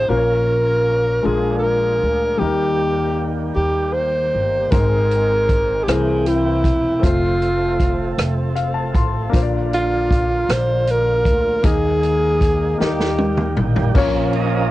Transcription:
Already playing: C5
0.08 A#1 A#2 F3 A#3 C#4 F4 A#4 C5
0.17 C#5
1.23 A#1 A#2 G#3 D4 F4 G#4 A#4
1.58 A4
1.63 A#4
2.02 D2
2.37 D#2 D#3 G3 A#3 D#4 G4
2.41 D#3 A#3 G4 A#4
3.55 D#2 G4
3.93 C5
4.34 G1
4.71 G#1 G#2 G#3 C4 D#4 G#4 A#4 C5, kick, closed hi-hat
5.11 closed hi-hat
5.49 kick, closed hi-hat
5.83 G4
5.87 C2 C3 E3 A#3 C4 E4 G#4 A#4 G5, cross-stick, closed hi-hat
6.26 E4, closed hi-hat
6.64 E1, kick, closed hi-hat
7.00 F1 F3 A3 C4 F4 A4, kick, closed hi-hat
7.04 A3 F4 C5
7.42 closed hi-hat
7.80 kick, closed hi-hat
8.18 F1, cross-stick, closed hi-hat
8.56 F5, closed hi-hat
8.74 A5
8.95 A1 C6, kick, closed hi-hat
9.29 A#2 A#3 D4 F4, kick
9.34 A#1 D3 F3 A#3 F4 C5, closed hi-hat
9.42 D5
9.73 F4, closed hi-hat
10.10 kick, closed hi-hat
10.49 A#1 C5, cross-stick, closed hi-hat
10.87 A#4, closed hi-hat
11.25 D2, kick, closed hi-hat
11.63 D#2 D#3 G#3 A#3 D#4 G#4 D#5, kick, closed hi-hat
12.03 closed hi-hat
12.41 kick, closed hi-hat
12.78 D#2 D#3 G3 A#3 D#4 G4 D#5, snare
13.00 snare
13.18 high tom
13.37 mid tom
13.57 A1, mid tom
13.76 floor tom
13.95 A#1 A#2 F3 A#3 C#4 F4 C#5, kick, crash
14.33 D#5, ride

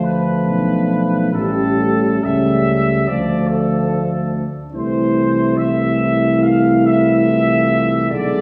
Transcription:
Already playing: D2 F3 A3 D4
0.04 B4
0.47 B1
1.33 A1 G3 A3 C#4 A4
2.23 C#2 G3 A3 C#4 E5
3.07 D2 F3 A3 D4 D5
3.48 A4
4.73 C2 E3 A3 E4 C5
5.56 E3 A3 E4 E5
6.43 F5
6.86 E5
7.26 F4
8.09 B1 D3 G#3 G#4 D5

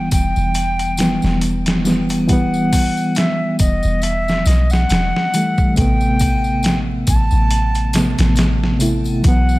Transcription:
Already playing: E3 G3 B3 G5
0.11 E1 G5, kick, closed hi-hat, tambourine
0.36 E1, tambourine
0.54 closed hi-hat, tambourine
0.79 closed hi-hat, tambourine
0.97 E3 G3 B3, snare, closed hi-hat, tambourine
1.22 E1, snare, tambourine
1.41 closed hi-hat, tambourine
1.66 snare, closed hi-hat
1.85 E3 G3 B3, snare, tambourine
2.09 closed hi-hat, tambourine, triangle
2.28 E3 G3 F#5, kick, closed hi-hat, tambourine
2.33 B3
2.54 tambourine
2.72 kick, open hi-hat, tambourine, triangle
2.97 tambourine
3.15 E5, snare, closed hi-hat, tambourine
3.59 E1 D#5, kick, closed hi-hat, tambourine
3.83 E1, tambourine
4.02 E5, closed hi-hat, tambourine
4.28 snare, tambourine
4.45 B1 D#5, snare, closed hi-hat, tambourine
4.70 F#5, snare, tambourine
4.89 E1, snare, closed hi-hat, tambourine
5.16 snare
5.34 E3 G3 A3, closed hi-hat, tambourine
5.58 kick, tambourine
5.76 A1 C3 A3 G5, kick, closed hi-hat, tambourine
5.82 B3
6.01 tambourine
6.19 kick, closed hi-hat, tambourine, triangle
6.44 tambourine
6.63 snare, closed hi-hat, tambourine
7.07 A1 A5, kick, closed hi-hat, tambourine
7.31 A1, tambourine
7.50 closed hi-hat, tambourine
7.75 closed hi-hat, tambourine
7.93 C3 A3 B3, snare, closed hi-hat, tambourine
8.18 A1, snare, closed hi-hat, tambourine
8.36 snare, closed hi-hat, tambourine
8.64 snare
8.79 C3 A3 E4, closed hi-hat, tambourine
9.04 tambourine, triangle
9.22 B1 E3 F#3 F#5, kick, closed hi-hat, tambourine
9.28 B3
9.49 tambourine

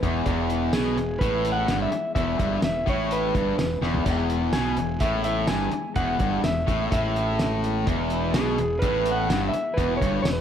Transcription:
0.01 E1 E2 E3 G#3 B3 E4, kick, closed hi-hat
0.26 E1 E2 B2 E3 G#3 B3 E4, kick, closed hi-hat
0.38 E3 G#3 B3 E4
0.49 E3 G#3 B3 E4, closed hi-hat
0.62 E3 G#3 B3 E4
0.73 B1 E2 B2 E3 G#3 B3 G#4, snare, closed hi-hat, tambourine
0.97 E1 E2 E3 G#3 B3 E4, closed hi-hat
1.19 A1 A2 B4, kick, closed hi-hat
1.32 E3 G#3 B3 E4
1.44 E3 G#3 B3 E4, closed hi-hat
1.52 F#5
1.58 E3 G#3 B3 E4
1.68 G1 E2 G2 B2 E3 G#3 B3 E4, snare, closed hi-hat, tambourine
1.82 E5
1.91 E3 G#3 B3 E4, muted fingered electric bass stroke, muted distorted electric guitar stroke, muted overdriven electric guitar stroke, closed hi-hat
2.04 E3 G#3 B3 E4
2.15 E1 E2 B2 E3 G#3 B3 E4 E5, kick, closed hi-hat
2.27 E3 G#3 B3 E4
2.39 G1 G2 E3 G#3 B3, kick, closed hi-hat
2.43 E4
2.52 E3 B3 E4
2.62 E1 E2 B2 E3 G#3 B3 E4 E5, snare, closed hi-hat, tambourine
2.86 A1 A2 E3 G#3 B3 E4 C#5, kick, closed hi-hat
3.11 B4, closed hi-hat
3.23 E3 G#3 B3 E4
3.35 G1 G2 E3 G#3 B3 E4, kick, closed hi-hat
3.46 E3 G#3 B3
3.57 E1 E2 B2 E3 G#3 B3 E4, snare, closed hi-hat, tambourine
3.81 E1 E2 E3 G#3 B3 E4, snare
3.94 floor tom
4.05 E1 E2 B2 E3 G#3 B3 E4, kick, closed hi-hat, splash
4.15 E3 G#3 B3 E4
4.29 G#3 B3 E4, closed hi-hat
4.40 E3 G#3 B3 E4
4.52 B1 E2 B2 E3 G#3 B3 E4 G#5, snare, closed hi-hat, tambourine
4.77 E1 E2 E3 G#3 B3 E4, closed hi-hat
5.00 A1 A2 E5, kick, closed hi-hat
5.13 E3 G#3 B3
5.24 E3 G#3 B3 E4 E5, closed hi-hat
5.38 E3 G#3 B3
5.47 G1 E2 G2 B2 E3 G#3 G#5, snare, closed hi-hat, tambourine
5.52 B3 E4
5.71 E3 G#3, muted overdriven electric guitar stroke, muted fingered electric bass stroke, muted distorted electric guitar stroke, closed hi-hat
5.76 B3 E4
5.85 E3 G#3 B3 E4
5.96 E1 E2 B2 E3 G#3 F#5, kick, closed hi-hat
6.00 B3 E4
6.10 E3 G#3 B3 E4
6.19 G1 G2 E3 G#3 B3, kick, closed hi-hat
6.24 E4
6.33 E3 G#3 B3 E4
6.43 E1 E2 B2 E3 G#3 B3 E4 E5, snare, closed hi-hat, tambourine
6.67 A1 A2 E3 G#3 B3, kick, closed hi-hat
6.91 A1 A2 E5, kick, closed hi-hat
7.04 E3 G#3 B3 E4
7.16 E3 G#3 B3 E4, closed hi-hat
7.27 E3 G#3 B3 E4
7.39 E2 B2 E3 G#3 B3 E4, snare, closed hi-hat, tambourine
7.64 E3 G#3 B3 E4, closed hi-hat
7.86 E1 E2 B2 E3 G#3 B3 E4, kick, closed hi-hat
8.00 E3 G#3 B3 E4
8.10 E3 G#3 B3 E4, closed hi-hat
8.22 E3 G#3 B3 E4
8.33 B1 E2 B2 E3 G#3 B3 E4 G#4, snare, closed hi-hat, tambourine
8.58 E1 E2 E3 G#3 B3 E4, closed hi-hat
8.79 A1 A2 B4, kick, closed hi-hat
8.94 E3 G#3 B3 E4
9.05 E3 G#3 B3 E4, closed hi-hat
9.12 F#5
9.18 E3 G#3 B3 E4
9.29 G1 E2 G2 B2 E3 G#3 B3 E4, snare, closed hi-hat, tambourine
9.49 E5
9.54 E3 G#3 B3 E4, muted overdriven electric guitar stroke, muted distorted electric guitar stroke, muted fingered electric bass stroke, closed hi-hat
9.66 E3 G#3 B3 E4
9.74 E1 E2 B4
9.78 E2 B2 E3 G#3 B3 E4, kick, closed hi-hat
9.90 E3 G#3 E4
9.97 C#5
10.01 G1 G2 E3 G#3 B3, kick, closed hi-hat
10.05 E4
10.13 E3 G#3 B3 E4
10.22 E1 E2 B2 E3 G#3 C#5, snare, closed hi-hat, tambourine
10.27 B3 E4
10.33 B4

